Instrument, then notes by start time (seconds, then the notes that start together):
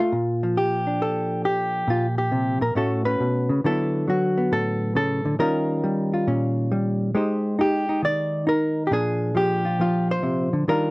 hollow-body jazz guitar
Already playing: A4 D#5
0.00 A3 F4
0.12 A#2
0.43 F3
0.57 G4
0.87 D4
1.02 A4
1.45 G4
1.88 A#2 F4
2.18 G4
2.32 C3
2.61 A#2 A#4
2.75 A2 A3 C#4 F#4 A4
3.05 C#4 B4
3.20 B2
3.49 C#3
3.64 D3 F#3 B3 E4 A4
4.08 F#3 F#4
4.38 B3
4.52 A2 A4
4.95 C#3 A4
5.25 D3
5.39 D#3 G3 C#4 F4 A#4
5.84 G3
6.14 F4
6.27 A#2 C#4
6.72 G3
7.15 G#3 D#4 G4 C5
7.59 D#4 G4
7.89 D#4
8.03 D#3 D5
8.47 D#4 A#4
8.87 G4
8.91 A#2 F3 D4 G#4
9.35 F3 G4
9.65 F4
9.79 F3 F4
10.11 C5
10.23 C3
10.53 D3
10.68 D#3 G3 D4 F4 A#4